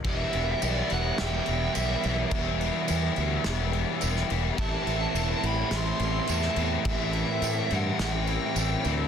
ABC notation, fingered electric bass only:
X:1
M:4/4
L:1/8
Q:1/4=106
K:Em
V:1 name="Fingered electric bass" clef=bass
E,,, E,,, B,,, E,,, E,,, E,,, B,,, B,,, | E,,,2 E,, D,, E,,,2 E,,, E,,, | A,,, A,,, E,,, A,,, A,,, A,,, E,, E,, | A,,,2 A,, G,, A,,,2 A,,, D,, |]